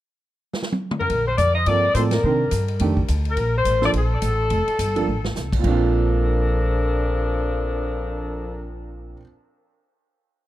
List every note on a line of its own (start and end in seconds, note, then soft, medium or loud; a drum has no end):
0.53 snare medium
0.62 snare medium
0.72 high tom medium
0.91 mid tom medium
1.00 1.25 A#4 medium
1.00 floor tom medium
1.10 1.37 A#1 medium
1.10 kick soft
1.10 ride medium
1.27 1.38 C5 medium
1.38 1.66 F2 medium
1.38 1.54 D5 loud
1.38 kick soft
1.38 hi-hat pedal medium
1.38 ride medium
1.54 1.65 D#5 loud
1.66 1.94 G2 medium
1.66 1.82 F3 medium
1.66 1.82 A#3 soft
1.66 1.82 C4 soft
1.66 1.83 A4 medium
1.66 1.95 D5 medium
1.66 kick soft
1.66 ride medium
1.94 2.22 A2 medium
1.94 2.11 F3 medium
1.94 2.10 A#3 soft
1.94 2.11 C4 soft
1.94 2.11 A4 medium
1.94 2.02 C5 medium
1.94 kick soft
1.94 hi-hat pedal medium
1.94 ride medium
2.11 2.65 A#4 medium
2.11 snare medium
2.11 ride medium
2.24 2.51 C3 medium
2.24 2.40 D#3 medium
2.24 2.40 C4 medium
2.24 2.40 D4 medium
2.24 2.40 A#4 medium
2.51 2.79 G2 medium
2.51 kick soft
2.51 hi-hat pedal medium
2.51 ride medium
2.68 ride soft
2.79 3.08 F2 medium
2.79 2.96 D#3 medium
2.79 2.95 A3 medium
2.79 2.96 D4 medium
2.79 2.96 G4 medium
2.79 kick soft
2.79 ride medium
2.97 kick soft
3.08 3.36 D2 medium
3.08 kick soft
3.08 hi-hat pedal medium
3.08 ride medium
3.25 ride soft
3.30 3.54 A#4 medium
3.37 3.64 A#1 medium
3.37 kick soft
3.37 ride medium
3.58 3.82 C5 medium
3.65 3.92 A1 medium
3.65 kick soft
3.65 hi-hat pedal soft
3.65 ride medium
3.81 3.92 F3 medium
3.81 3.92 A#3 medium
3.81 3.92 D4 medium
3.81 3.92 A4 medium
3.81 3.89 D5 loud
3.81 snare soft
3.93 4.21 A#1 medium
3.93 kick soft
3.93 ride medium
3.98 5.33 A4 medium
4.22 4.49 A1 medium
4.22 kick soft
4.22 hi-hat pedal medium
4.22 ride medium
4.50 4.66 F1 medium
4.50 kick soft
4.50 ride medium
4.68 ride soft
4.79 5.06 G1 medium
4.79 kick soft
4.79 hi-hat pedal medium
4.79 ride medium
4.96 5.06 F3 medium
4.96 5.06 A#3 medium
4.96 5.06 D4 medium
4.96 5.06 A4 medium
4.96 ride soft
5.07 5.34 A1 medium
5.24 snare medium
5.36 5.63 C2 medium
5.36 snare soft
5.36 hi-hat pedal medium
5.53 kick medium
5.53 crash medium
5.59 9.12 A#2 medium
5.59 9.15 F3 medium
5.64 9.13 A#1 loud
5.64 8.67 F3 medium
5.64 9.18 C4 medium
5.64 8.67 D4 medium
5.64 9.20 D4 medium
5.64 8.67 A4 medium
5.64 8.66 A#4 medium
5.64 kick medium
5.64 crash medium
5.71 9.24 F4 medium
5.81 cymbal swell soft